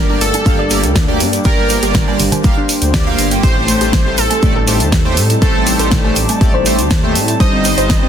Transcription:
Already playing: G1 G3 A#3 D4 G4 A#4 D5
0.09 G2 A#3 D4 G4 D5
0.21 G1 A4, open hi-hat, shaker
0.33 D4, closed hi-hat, high woodblock, shaker
0.46 G1 G2 A#3 D4 G4 F5, kick, closed hi-hat, shaker
0.59 D5
0.70 G2 A#3 G4 D5, open hi-hat, shaker
0.83 D2, closed hi-hat, shaker
0.96 kick, snare, closed hi-hat, shaker
1.08 G2 A#3 G4 D5
1.20 G2, open hi-hat, shaker
1.33 closed hi-hat, shaker
1.44 G1 G2 A#3 G4 A#4 C5 D5, kick, closed hi-hat, shaker
1.58 G3
1.69 G3, open hi-hat, shaker
1.82 G1 G2 A#3 G4 D5, closed hi-hat, shaker
1.94 G3, kick, snare, closed hi-hat, low conga, shaker
2.07 G2 G3 A#3 G4 D5, high woodblock
2.19 G1, open hi-hat, high conga, shaker
2.32 G3, closed hi-hat, high conga, high woodblock, shaker
2.44 G1 G2 G3 A#3 G4 F5, kick, closed hi-hat, shaker
2.57 D4
2.69 open hi-hat, shaker
2.82 D2, closed hi-hat, shaker
2.94 G2 A#3 G4 D5, kick, snare, closed hi-hat, shaker
3.07 G2 A#3 G4 F5
3.19 G1, open hi-hat, shaker
3.31 A#3 G4 G5, closed hi-hat, shaker
3.43 A1 A3 C4 D#4 G4 A4 C5 A5, kick, closed hi-hat, shaker
3.56 A3
3.68 A3, open hi-hat, shaker
3.81 A1 A2 A3 G4 C5, closed hi-hat, shaker
3.93 A3, kick, snare, closed hi-hat, shaker
4.06 A2 A3 G4 C5
4.18 A1 A4, open hi-hat, shaker
4.30 A3, closed hi-hat, high woodblock, shaker
4.42 A1 A2 A3 G4 D5, kick, closed hi-hat, shaker
4.56 A4
4.67 A2 A3 G4 C5, open hi-hat, shaker
4.80 D#2, closed hi-hat, shaker
4.92 kick, snare, closed hi-hat, shaker
5.05 A2 A3 G4 C5
5.17 A2, open hi-hat, shaker
5.30 closed hi-hat, shaker
5.42 A1 A2 A3 G4 A4 C5 D5, kick, closed hi-hat, shaker
5.55 A3
5.67 A3, open hi-hat, shaker
5.79 A1 A2 A3 G4 A4 C5, closed hi-hat, shaker
5.91 A3, kick, snare, closed hi-hat, low conga, shaker
6.04 A2 A3 G4 C5, high woodblock
6.16 A1, open hi-hat, shaker
6.29 A3, closed hi-hat, high woodblock, shaker
6.41 A1 A2 A3 G4 D5, kick, closed hi-hat, shaker
6.54 C5
6.66 A2 A3 G4 C5, open hi-hat, shaker
6.78 D#2, closed hi-hat, shaker
6.90 kick, snare, closed hi-hat, shaker
7.03 A2 A3 G4 C5
7.15 A2, open hi-hat, shaker
7.28 closed hi-hat, shaker
7.40 G1 G2 G3 D#4 C5 D#5 G5, kick, closed hi-hat, shaker
7.53 C4
7.65 C4, open hi-hat, shaker
7.78 G1 G2 G3 D#4 C5, closed hi-hat, shaker
7.90 C4, kick, snare, closed hi-hat, shaker
8.02 G2 G3 C4 D#4 C5

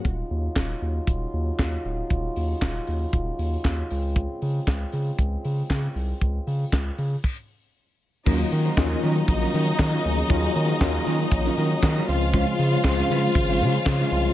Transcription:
0.05 D#1 C#3 F#3 D#4 F4, kick, closed hi-hat
0.31 D#2
0.56 D#1, kick, snare, clap, closed hi-hat
0.82 D#2
1.07 D#1, kick, closed hi-hat
1.33 D#2
1.59 D#2, kick, snare, clap, closed hi-hat
1.85 D1
2.10 D#1, kick, closed hi-hat
2.36 D#2, open hi-hat
2.62 D#1, kick, snare, clap, closed hi-hat
2.87 D#2, open hi-hat
3.13 D#1, kick, closed hi-hat
3.39 D#2, open hi-hat
3.64 D#2, kick, snare, clap, closed hi-hat
3.90 C#2 G#3 C4, open hi-hat
4.16 kick, closed hi-hat
4.42 C#3, open hi-hat
4.67 C#2, kick, snare, clap, closed hi-hat
4.92 C#3, open hi-hat
5.19 C#2, kick, closed hi-hat
5.45 C#3, open hi-hat
5.70 C#3, kick, snare, clap, closed hi-hat
5.95 C2, open hi-hat
6.21 C#2, kick, closed hi-hat
6.47 C#3, open hi-hat
6.73 C#2, kick, snare, clap, closed hi-hat
6.98 C#3, open hi-hat
7.24 kick, crash
8.26 D#2 C#3 D#3 F#3 A#3 C#4 D#4 F4 A#4 D#5, kick, crash
8.33 F4
8.39 muted clean electric guitar stroke, closed hi-hat
8.52 D#3, muted clean electric guitar stroke, open hi-hat
8.65 F#3 C#4 F4 C5, closed hi-hat
8.77 D#2 D#3 F3 A#3 C#4 F4, kick, snare, clap
8.84 F#3
8.91 F#3 C#4 F4 A#4, closed hi-hat
9.03 D#3 F#3 C#4 F4 A#4, open hi-hat
9.16 muted clean electric guitar stroke, closed hi-hat
9.28 A#1, muted clean electric guitar stroke, kick, closed hi-hat
9.42 F#3 C#4 F4 A#4, closed hi-hat
9.54 D#3 F#3 C#4 F4 A#4, open hi-hat
9.67 muted clean electric guitar stroke, closed hi-hat
9.79 D#3, muted clean electric guitar stroke, kick, snare, clap
9.92 F#3 C#4 F4 A#4, closed hi-hat
10.04 D2 D#3 F#3 A#3 C#4 G#4, open hi-hat
10.18 muted clean electric guitar stroke, closed hi-hat
10.29 D#2 D#3 F#3 A#3 C#4 F4 A#4, kick, closed hi-hat
10.43 muted clean electric guitar stroke, closed hi-hat
10.55 D#3, muted clean electric guitar stroke, open hi-hat
10.68 F#3 C#4 F4 C5, closed hi-hat
10.81 D#2 D#3 F#3 A#3 C#4 F4, kick, snare, clap
10.94 F#3 C#4 F4 A#4, closed hi-hat
11.06 D#3 F#3 C#4 F4 A#4, open hi-hat
11.20 muted clean electric guitar stroke, closed hi-hat
11.32 A#1, kick, closed hi-hat
11.45 F#3 C#4 F4 A#4, closed hi-hat
11.57 D#3 F#3 C#4 F4 A#4, open hi-hat
11.71 muted clean electric guitar stroke, closed hi-hat
11.83 D#3, kick, snare, clap
11.96 F#3 C#4 F4 A#4, closed hi-hat
12.08 C#2 C#3 F3 G#3 C4 F4 C5 F5, open hi-hat
12.22 muted clean electric guitar stroke, closed hi-hat
12.33 G#3 C#4 F4 C5, kick, closed hi-hat
12.47 muted clean electric guitar stroke, closed hi-hat
12.59 C#3, muted clean electric guitar stroke, open hi-hat
12.73 G#3 C#4 F4 C#5, closed hi-hat
12.84 C#2 C#3 F3 G#3 C4 F4, kick, snare, clap
12.98 G#3 C#4 F4 C5, closed hi-hat
13.10 C#3 G#3 C#4 F4 C5, open hi-hat
13.24 muted clean electric guitar stroke, closed hi-hat
13.35 G#1, muted clean electric guitar stroke, kick, closed hi-hat
13.49 G#3 C#4 F4 C5, closed hi-hat
13.60 C#3 G#3 C#4 F4 C5, open hi-hat
13.74 muted clean electric guitar stroke, closed hi-hat
13.86 C#3, muted clean electric guitar stroke, kick, snare, clap
13.99 G#3 C#4 F4 C5, closed hi-hat
14.11 C2 C#3 F3 G#3 C4 F4 C5, muted clean electric guitar stroke, open hi-hat
14.25 muted clean electric guitar stroke, closed hi-hat

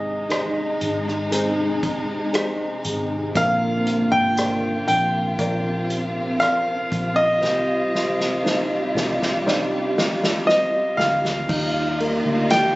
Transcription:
Already playing: G#1 G#2 C3 D#3 G#3 C4 D#4 G#4 D#5
0.29 D#4 G#4 C5, cross-stick, closed hi-hat
0.81 G#1, closed hi-hat
1.08 cross-stick
1.31 G#3 C4 D#4 G#4 C5, closed hi-hat
1.83 kick, closed hi-hat
2.33 G#3 C4 D#4 G#4 C5, cross-stick, closed hi-hat
2.85 G#1, closed hi-hat
3.34 A#1 A#2 D3 F3 A#3 C4 D4 F4 A#4 F5, kick, closed hi-hat
3.87 closed hi-hat
4.12 G#1 G5
4.37 A#4 C5 D5, cross-stick, closed hi-hat
4.87 A#1 F3 C4 D4 A#4 G5, closed hi-hat
5.38 A#1 F3 C4 D4 A#4 C5 D5, kick, closed hi-hat
5.90 closed hi-hat
6.40 F3 C4 D4 A#4 C5 D5 F5, cross-stick, closed hi-hat
6.92 A#1, kick, closed hi-hat
7.16 D#5
7.41 C2 C3 D#3 G3 C4 G4, snare
7.95 snare
8.20 snare
8.43 D#4 C5, snare
8.93 C2 G3 C4 D4 G4, snare
9.22 snare
9.44 G3 C4 D4 D#4 G4 C5 D5, snare
9.98 snare
10.24 snare
10.46 G3 C4 G4 C5 D#5, snare
10.97 D2 F5, snare
11.25 snare
11.49 D#2 G3 D#4 F4, kick, crash
12.00 A#3, ride
12.25 D2
12.50 G4 G5, snare, ride, tambourine

